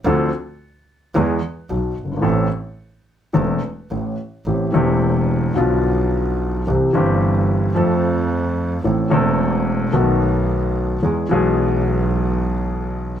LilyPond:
<<
  \new Staff \with { instrumentName = "Grand piano" } { \clef bass \time 4/4 \key a \minor \tempo 4 = 109 <d, d f c' d' a'>8 r4. <e, e gis b gis'>8 r8 <b,, b,>8 r32 fis,,32 g,,32 gis,,32 | <a,, a, e a c' a'>8 r4. <e,, e, e a c' a'>8 r8 <a,, a,>8 r8 | <a,, a, e a c' g'>8 <e,, e, e a c' g'>4. <b,, b, d f b f'>2 | <c, c e g c' g'>8 <g,, g, e g c' g'>4. <f, f a c' a'>2 |
<a,, a, e a c' a'>8 <e,, e, e a c' a'>4. <b,, b, dis a b fis'>2 | <e, e gis b gis'>8 <b,, b, e gis b gis'>2.~ <b,, b, e gis b gis'>8 | }
  \new Staff \with { instrumentName = "Double bass" } { \clef bass \time 4/4 \key a \minor d,8 r4. e,8 r8 b,,8 g,,8 | a,,8 r4. e,,8 r8 a,,8 r8 | a,,8 e,,4. b,,2 | c,8 g,,4. f,2 |
a,,8 e,,4. b,,2 | e,8 b,,2.~ b,,8 | }
>>